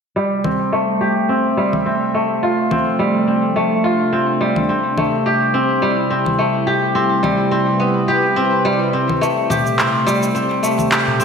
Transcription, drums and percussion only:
0.44 low conga
1.73 low conga
2.71 low conga
4.56 low conga
4.98 low conga
6.26 low conga
7.24 low conga
9.09 low conga
9.23 shaker
9.50 darbuka dum, low conga, shaker
9.66 darbuka ka, shaker
9.79 clap, shaker
10.08 shaker
10.23 shaker
10.36 shaker
10.51 darbuka ka, darbuka tek
10.64 shaker
10.78 darbuka tek, low conga, shaker
10.92 clap, shaker
11.08 darbuka dum
11.20 shaker

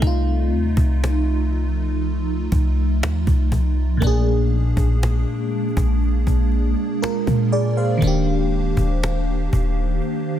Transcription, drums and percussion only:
0.02 cajon bass
0.77 cajon bass
1.04 cajon slap
1.52 cajon slap
1.69 cajon slap
1.85 cajon slap
2.02 cajon slap
2.52 cajon bass
3.03 cajon slap
3.27 cajon bass
3.52 cajon bass
4.02 cajon bass
4.77 cajon bass
5.03 cajon slap
5.52 cajon slap
5.69 cajon slap
5.77 cajon bass
5.85 cajon slap
6.02 cajon slap
6.27 cajon bass
6.52 cajon slap
7.04 cajon slap
7.27 cajon bass
7.52 cajon slap
8.02 cajon bass
8.77 cajon bass
9.04 cajon slap
9.53 cajon bass
10.02 cajon slap

